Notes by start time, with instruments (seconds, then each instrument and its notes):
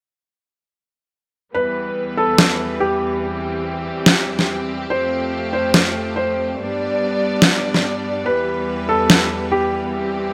1.54 string section E2 E3 G3 B3 B4, felt piano B4
2.17 felt piano A4
2.38 snare
2.80 felt piano G4
3.22 string section C4 G4
4.06 snare
4.39 snare
4.90 string section F2 F3 A3, felt piano C5
5.53 felt piano C5
5.74 snare
6.16 felt piano C5
6.58 string section G2 G3 B3 D4 D5
7.42 snare
7.74 snare
8.26 string section E2 E3 B3 B4, felt piano B4
8.89 felt piano A4
9.10 snare
9.52 felt piano G4
9.94 string section C4 G4